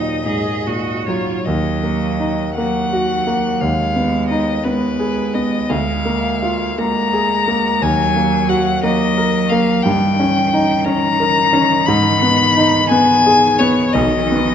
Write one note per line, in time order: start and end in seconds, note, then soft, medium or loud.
0.00 1.42 D#2 soft
0.00 0.50 A#2 soft
0.00 1.08 F#3 soft
0.00 0.17 D#4 soft
0.00 1.06 D#5 medium
0.25 0.67 G#2 soft
0.25 0.68 G#4 soft
0.66 1.31 A#2 soft
0.66 1.09 F#4 soft
1.07 1.46 F#3 soft
1.07 1.45 F4 soft
1.07 1.47 C#5 medium
1.45 3.58 D#2 soft
1.45 2.52 F#3 soft
1.45 2.54 D#5 medium
1.83 2.42 A#3 soft
2.20 2.77 D#4 soft
2.55 3.62 F#3 soft
2.55 3.13 A#3 soft
2.55 3.61 F#5 medium
2.92 3.48 F#4 soft
3.27 3.61 A#3 soft
3.60 5.66 D#2 soft
3.60 4.64 G#3 soft
3.60 4.28 F5 medium
3.96 4.51 B3 soft
4.28 4.86 D#4 soft
4.28 4.65 D#5 medium
4.64 5.68 G#3 soft
4.64 5.20 B3 soft
4.64 5.35 B4 medium
5.00 5.56 G#4 soft
5.34 5.70 B3 soft
5.34 5.71 D#5 medium
5.69 7.78 D2 soft
5.69 6.77 G#3 medium
5.69 6.80 F5 medium
6.05 6.64 A#3 soft
6.43 7.00 F4 soft
6.78 7.84 G#3 soft
6.78 7.34 A#3 soft
6.78 7.84 A#5 medium
7.13 7.68 G#4 soft
7.48 7.82 A#3 soft
7.82 9.81 D#2 medium
7.82 8.83 F#3 medium
7.82 8.50 G#5 medium
8.16 8.70 A#3 soft
8.49 9.03 F#4 soft
8.49 8.83 F#5 medium
8.83 9.84 F#3 medium
8.83 9.38 A#3 medium
8.83 9.51 D#5 medium
9.18 9.72 A#4 soft
9.49 9.86 A#3 medium
9.49 9.84 F5 medium
9.83 11.84 G2 medium
9.83 13.90 D#3 medium
9.83 10.86 G5 medium
10.19 10.72 C#4 soft
10.53 11.07 D#4 soft
10.85 11.40 C#4 medium
10.85 11.87 A#5 loud
11.20 11.74 A#4 medium
11.53 11.87 C#4 medium
11.86 13.91 G#2 medium
11.86 12.89 B5 loud
12.22 12.77 B3 medium
12.57 13.12 D#4 medium
12.89 13.46 B3 medium
12.89 13.61 G#5 loud
13.26 13.81 G#4 medium
13.59 13.95 B3 medium
13.59 13.94 C#5 medium
13.93 14.55 B1 medium
13.93 14.55 D#3 medium
13.93 14.55 D#5 medium
14.32 14.55 B3 soft